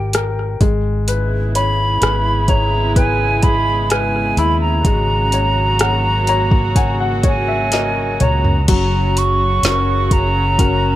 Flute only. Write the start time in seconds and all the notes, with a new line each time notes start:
Already playing: G5
1.56 B5
2.49 A#5
2.97 G#5
3.43 B5
3.90 G#5
4.38 B5
4.61 A#5
7.28 G#5
8.23 A#5
8.70 A#5
9.18 C#6
10.13 A#5